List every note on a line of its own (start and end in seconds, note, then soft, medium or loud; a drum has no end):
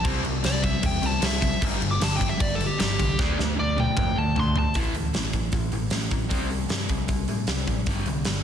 0.04 0.19 C2 loud
0.04 0.23 C3 loud
0.04 0.23 G3 medium
0.04 0.23 C4 loud
0.04 kick loud
0.04 crash medium
0.24 0.38 C2 loud
0.24 0.42 C3 medium
0.24 0.42 G3 medium
0.24 crash medium
0.43 0.71 C2 medium
0.43 0.61 C3 medium
0.43 0.62 G3 medium
0.43 0.64 D5 medium
0.43 snare loud
0.43 crash medium
0.62 0.81 C3 medium
0.62 0.81 G3 medium
0.62 0.83 E5 medium
0.62 kick medium
0.62 crash medium
0.82 0.97 E2 medium
0.82 1.01 C3 medium
0.82 1.01 G3 medium
0.82 1.06 G5 loud
0.82 kick loud
0.82 crash medium
1.02 1.16 C2 loud
1.02 1.19 C3 medium
1.02 1.20 G3 medium
1.02 crash medium
1.06 1.24 A5 medium
1.20 1.49 C2 medium
1.20 1.39 C3 medium
1.20 1.39 G3 medium
1.20 snare loud
1.20 crash medium
1.26 1.63 E5 loud
1.41 1.60 C3 medium
1.41 1.59 G3 medium
1.41 kick medium
1.41 crash medium
1.60 1.76 G1 medium
1.60 1.78 G2 loud
1.60 1.78 D3 loud
1.60 1.80 G3 loud
1.60 kick loud
1.60 crash medium
1.79 1.96 G1 loud
1.79 1.98 G2 medium
1.79 1.98 D3 medium
1.79 crash medium
1.91 2.03 D6 loud
2.00 2.28 G1 medium
2.00 2.17 G2 medium
2.00 2.18 D3 medium
2.00 2.15 A5 loud
2.00 snare loud
2.00 crash medium
2.17 2.37 G2 medium
2.17 2.37 D3 medium
2.17 2.28 G5 medium
2.21 kick medium
2.21 crash medium
2.29 2.41 E5 medium
2.38 2.67 G1 medium
2.38 2.57 G2 medium
2.38 2.57 D3 medium
2.38 2.54 D5 loud
2.38 kick loud
2.38 crash medium
2.55 2.77 G2 medium
2.55 2.77 D3 medium
2.55 2.66 A4 medium
2.61 crash medium
2.66 2.79 G4 medium
2.79 2.94 G1 medium
2.79 2.97 G2 medium
2.79 2.98 D3 medium
2.79 3.18 G4 loud
2.79 snare loud
2.79 crash medium
2.98 3.13 C2 medium
2.98 3.17 G2 medium
2.98 3.17 D3 medium
2.98 kick medium
2.98 crash medium
3.19 3.32 D2 medium
3.19 3.36 D3 medium
3.19 3.37 A3 loud
3.19 3.38 D4 loud
3.19 kick loud
3.19 snare medium
3.37 3.53 D2 loud
3.37 3.55 D3 medium
3.37 3.56 A3 medium
3.37 snare medium
3.56 3.75 D3 medium
3.56 3.75 A3 medium
3.56 3.78 D5 loud
3.60 3.87 D2 medium
3.76 3.95 D3 medium
3.76 3.95 A3 medium
3.76 4.17 G5 medium
3.76 high tom medium
3.96 4.11 F2 medium
3.96 4.15 D3 medium
3.96 4.15 A3 medium
3.96 kick loud
3.96 mid tom loud
4.16 4.31 D2 medium
4.16 4.34 D3 medium
4.16 4.34 A3 medium
4.16 4.39 A5 loud
4.36 4.64 D2 medium
4.36 4.54 D3 medium
4.36 4.54 A3 medium
4.36 4.57 C6 loud
4.36 floor tom loud
4.55 4.73 D3 medium
4.55 4.74 A3 medium
4.55 4.76 A5 loud
4.55 floor tom medium
4.74 4.90 A1 medium
4.74 4.94 A2 medium
4.74 4.94 E3 medium
4.74 4.94 A3 medium
4.74 kick loud
4.74 open hi-hat medium
4.95 5.10 D2 medium
4.95 5.13 A2 medium
4.95 5.13 E3 medium
4.95 open hi-hat medium
5.14 5.30 A1 medium
5.14 5.32 A2 medium
5.14 5.32 E3 medium
5.14 snare loud
5.14 open hi-hat medium
5.33 5.49 A1 medium
5.33 5.51 A2 medium
5.33 5.52 E3 medium
5.33 kick medium
5.33 open hi-hat medium
5.52 5.68 A1 medium
5.52 5.71 A2 medium
5.52 5.71 E3 medium
5.52 kick loud
5.52 open hi-hat medium
5.72 5.88 A1 medium
5.72 5.90 A2 medium
5.72 5.91 E3 medium
5.72 open hi-hat soft
5.90 6.07 A1 medium
5.90 6.10 A2 medium
5.90 6.10 E3 medium
5.90 snare loud
5.90 open hi-hat medium
6.11 6.27 A1 medium
6.11 6.29 A2 medium
6.11 6.29 E3 medium
6.11 kick medium
6.11 open hi-hat soft
6.29 6.62 C2 medium
6.29 6.49 C3 medium
6.29 6.49 G3 medium
6.29 6.49 C4 medium
6.29 kick loud
6.29 open hi-hat medium
6.50 6.68 C3 medium
6.50 6.69 G3 medium
6.50 open hi-hat soft
6.69 6.86 G2 medium
6.69 6.88 C3 medium
6.69 6.88 G3 medium
6.69 snare loud
6.69 open hi-hat medium
6.89 7.05 C2 medium
6.89 7.07 C3 medium
6.89 7.08 G3 medium
6.89 kick medium
6.89 open hi-hat medium
7.08 7.24 C2 medium
7.08 7.27 C3 medium
7.08 7.27 G3 medium
7.08 kick loud
7.08 open hi-hat medium
7.28 7.44 A2 medium
7.28 7.46 C3 medium
7.28 7.47 G3 medium
7.28 open hi-hat medium
7.47 7.63 C2 medium
7.47 7.66 C3 medium
7.47 7.66 G3 medium
7.47 snare loud
7.47 open hi-hat medium
7.67 7.83 A1 medium
7.67 7.85 C3 medium
7.67 7.86 G3 medium
7.67 kick medium
7.67 open hi-hat medium
7.86 8.03 G1 medium
7.86 8.06 G2 medium
7.86 8.07 D3 medium
7.86 8.07 G3 medium
7.86 kick loud
7.86 open hi-hat medium
8.06 8.22 C2 medium
8.06 8.25 G2 medium
8.06 8.26 D3 medium
8.06 open hi-hat medium
8.25 8.41 G1 medium
8.25 8.43 G2 medium
8.25 8.43 D3 medium
8.25 snare loud
8.25 open hi-hat medium
8.36 snare soft